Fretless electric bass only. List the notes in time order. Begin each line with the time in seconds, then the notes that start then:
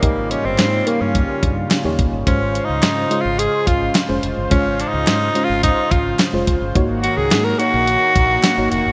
0.03 G#1
0.45 G1
0.59 G#2
1.01 G2
1.43 G2
1.85 D#2
1.99 F1
2.13 G1
2.27 G#1
2.69 C#2
2.83 G#2
3.25 G#1
3.67 G#1
4.09 F1
4.23 F1
4.37 G1
4.51 G#1
4.93 C#2
5.07 G#2
5.50 G#1
5.91 G#1
6.33 F1
6.47 F1
6.62 G1
6.75 G#1
7.17 C#2
7.31 G#2
7.74 A#1
8.16 A#1
8.58 G#1
8.72 F1
8.86 F#1